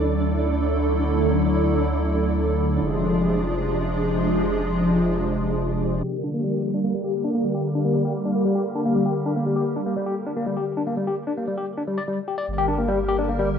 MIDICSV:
0, 0, Header, 1, 5, 480
1, 0, Start_track
1, 0, Tempo, 402685
1, 1435, Time_signature, 4, 2, 24, 8
1, 16197, End_track
2, 0, Start_track
2, 0, Title_t, "Synth texture"
2, 0, Program_c, 0, 99
2, 0, Note_on_c, 0, 62, 83
2, 0, Note_on_c, 0, 74, 84
2, 7204, Note_off_c, 0, 74, 0
2, 7205, Note_off_c, 0, 62, 0
2, 16197, End_track
3, 0, Start_track
3, 0, Title_t, "Tine electric piano"
3, 0, Program_c, 1, 4
3, 7194, Note_on_c, 1, 67, 74
3, 7281, Note_off_c, 1, 67, 0
3, 7435, Note_on_c, 1, 62, 73
3, 7487, Note_off_c, 1, 62, 0
3, 7555, Note_on_c, 1, 58, 74
3, 7641, Note_off_c, 1, 58, 0
3, 7674, Note_on_c, 1, 55, 76
3, 7761, Note_off_c, 1, 55, 0
3, 7794, Note_on_c, 1, 67, 70
3, 7881, Note_off_c, 1, 67, 0
3, 8034, Note_on_c, 1, 62, 73
3, 8086, Note_off_c, 1, 62, 0
3, 8154, Note_on_c, 1, 58, 76
3, 8241, Note_off_c, 1, 58, 0
3, 8275, Note_on_c, 1, 55, 69
3, 8361, Note_off_c, 1, 55, 0
3, 8395, Note_on_c, 1, 67, 73
3, 8481, Note_off_c, 1, 67, 0
3, 8634, Note_on_c, 1, 62, 77
3, 8686, Note_off_c, 1, 62, 0
3, 8754, Note_on_c, 1, 58, 72
3, 8841, Note_off_c, 1, 58, 0
3, 8875, Note_on_c, 1, 55, 70
3, 8961, Note_off_c, 1, 55, 0
3, 8994, Note_on_c, 1, 67, 72
3, 9081, Note_off_c, 1, 67, 0
3, 9236, Note_on_c, 1, 62, 71
3, 9287, Note_off_c, 1, 62, 0
3, 9356, Note_on_c, 1, 58, 74
3, 9442, Note_off_c, 1, 58, 0
3, 9475, Note_on_c, 1, 55, 74
3, 9561, Note_off_c, 1, 55, 0
3, 9595, Note_on_c, 1, 67, 76
3, 9681, Note_off_c, 1, 67, 0
3, 9836, Note_on_c, 1, 62, 71
3, 9887, Note_off_c, 1, 62, 0
3, 9955, Note_on_c, 1, 58, 72
3, 10041, Note_off_c, 1, 58, 0
3, 10075, Note_on_c, 1, 55, 76
3, 10162, Note_off_c, 1, 55, 0
3, 10195, Note_on_c, 1, 67, 74
3, 10281, Note_off_c, 1, 67, 0
3, 10434, Note_on_c, 1, 62, 74
3, 10486, Note_off_c, 1, 62, 0
3, 10554, Note_on_c, 1, 58, 79
3, 10641, Note_off_c, 1, 58, 0
3, 10675, Note_on_c, 1, 55, 73
3, 10761, Note_off_c, 1, 55, 0
3, 10795, Note_on_c, 1, 67, 69
3, 10882, Note_off_c, 1, 67, 0
3, 11036, Note_on_c, 1, 62, 77
3, 11087, Note_off_c, 1, 62, 0
3, 11155, Note_on_c, 1, 58, 72
3, 11242, Note_off_c, 1, 58, 0
3, 11276, Note_on_c, 1, 55, 71
3, 11362, Note_off_c, 1, 55, 0
3, 11395, Note_on_c, 1, 67, 73
3, 11481, Note_off_c, 1, 67, 0
3, 11635, Note_on_c, 1, 62, 70
3, 11687, Note_off_c, 1, 62, 0
3, 11754, Note_on_c, 1, 58, 72
3, 11841, Note_off_c, 1, 58, 0
3, 11876, Note_on_c, 1, 55, 76
3, 11962, Note_off_c, 1, 55, 0
3, 11995, Note_on_c, 1, 67, 77
3, 12082, Note_off_c, 1, 67, 0
3, 12235, Note_on_c, 1, 62, 71
3, 12287, Note_off_c, 1, 62, 0
3, 12356, Note_on_c, 1, 58, 75
3, 12442, Note_off_c, 1, 58, 0
3, 12476, Note_on_c, 1, 55, 78
3, 12562, Note_off_c, 1, 55, 0
3, 12597, Note_on_c, 1, 67, 72
3, 12682, Note_off_c, 1, 67, 0
3, 12837, Note_on_c, 1, 62, 73
3, 12888, Note_off_c, 1, 62, 0
3, 12956, Note_on_c, 1, 58, 76
3, 13042, Note_off_c, 1, 58, 0
3, 13076, Note_on_c, 1, 55, 74
3, 13162, Note_off_c, 1, 55, 0
3, 13197, Note_on_c, 1, 67, 74
3, 13282, Note_off_c, 1, 67, 0
3, 13437, Note_on_c, 1, 62, 77
3, 13488, Note_off_c, 1, 62, 0
3, 13557, Note_on_c, 1, 58, 70
3, 13642, Note_off_c, 1, 58, 0
3, 13677, Note_on_c, 1, 55, 75
3, 13762, Note_off_c, 1, 55, 0
3, 13797, Note_on_c, 1, 67, 74
3, 13882, Note_off_c, 1, 67, 0
3, 14037, Note_on_c, 1, 62, 74
3, 14088, Note_off_c, 1, 62, 0
3, 14155, Note_on_c, 1, 55, 73
3, 14269, Note_off_c, 1, 55, 0
3, 14276, Note_on_c, 1, 74, 95
3, 14327, Note_off_c, 1, 74, 0
3, 14395, Note_on_c, 1, 55, 80
3, 14509, Note_off_c, 1, 55, 0
3, 14636, Note_on_c, 1, 67, 73
3, 14722, Note_off_c, 1, 67, 0
3, 14756, Note_on_c, 1, 74, 98
3, 14842, Note_off_c, 1, 74, 0
3, 14997, Note_on_c, 1, 67, 102
3, 15082, Note_off_c, 1, 67, 0
3, 15117, Note_on_c, 1, 62, 78
3, 15230, Note_off_c, 1, 62, 0
3, 15236, Note_on_c, 1, 58, 76
3, 15350, Note_off_c, 1, 58, 0
3, 15358, Note_on_c, 1, 55, 98
3, 15470, Note_off_c, 1, 55, 0
3, 15597, Note_on_c, 1, 67, 103
3, 15683, Note_off_c, 1, 67, 0
3, 15718, Note_on_c, 1, 62, 79
3, 15830, Note_off_c, 1, 62, 0
3, 15838, Note_on_c, 1, 58, 80
3, 15950, Note_off_c, 1, 58, 0
3, 15958, Note_on_c, 1, 55, 100
3, 16071, Note_off_c, 1, 55, 0
3, 16197, End_track
4, 0, Start_track
4, 0, Title_t, "Analog synth pad"
4, 0, Program_c, 2, 89
4, 0, Note_on_c, 2, 50, 82
4, 0, Note_on_c, 2, 54, 74
4, 0, Note_on_c, 2, 57, 75
4, 0, Note_on_c, 2, 64, 75
4, 0, Note_on_c, 2, 69, 92
4, 3316, Note_off_c, 2, 54, 0
4, 3316, Note_off_c, 2, 57, 0
4, 3316, Note_off_c, 2, 69, 0
4, 3317, Note_off_c, 2, 50, 0
4, 3317, Note_off_c, 2, 64, 0
4, 3354, Note_on_c, 2, 48, 83
4, 3354, Note_on_c, 2, 53, 75
4, 3354, Note_on_c, 2, 56, 78
4, 3354, Note_on_c, 2, 65, 75
4, 3354, Note_on_c, 2, 68, 92
4, 7156, Note_off_c, 2, 48, 0
4, 7156, Note_off_c, 2, 53, 0
4, 7156, Note_off_c, 2, 56, 0
4, 7156, Note_off_c, 2, 65, 0
4, 7156, Note_off_c, 2, 68, 0
4, 7193, Note_on_c, 2, 55, 74
4, 7193, Note_on_c, 2, 67, 74
4, 7194, Note_on_c, 2, 50, 80
4, 7194, Note_on_c, 2, 58, 72
4, 7194, Note_on_c, 2, 70, 88
4, 13866, Note_off_c, 2, 55, 0
4, 13867, Note_off_c, 2, 50, 0
4, 13867, Note_off_c, 2, 58, 0
4, 13867, Note_off_c, 2, 67, 0
4, 13867, Note_off_c, 2, 70, 0
4, 14875, Note_on_c, 2, 70, 91
4, 14876, Note_on_c, 2, 50, 84
4, 14876, Note_on_c, 2, 55, 76
4, 14876, Note_on_c, 2, 58, 78
4, 14876, Note_on_c, 2, 67, 77
4, 16197, Note_off_c, 2, 50, 0
4, 16197, Note_off_c, 2, 55, 0
4, 16197, Note_off_c, 2, 58, 0
4, 16197, Note_off_c, 2, 67, 0
4, 16197, Note_off_c, 2, 70, 0
4, 16197, End_track
5, 0, Start_track
5, 0, Title_t, "Sub bass"
5, 0, Program_c, 3, 38
5, 0, Note_on_c, 3, 38, 86
5, 3331, Note_off_c, 3, 38, 0
5, 3355, Note_on_c, 3, 29, 86
5, 7171, Note_off_c, 3, 29, 0
5, 14876, Note_on_c, 3, 31, 85
5, 16197, Note_off_c, 3, 31, 0
5, 16197, End_track
0, 0, End_of_file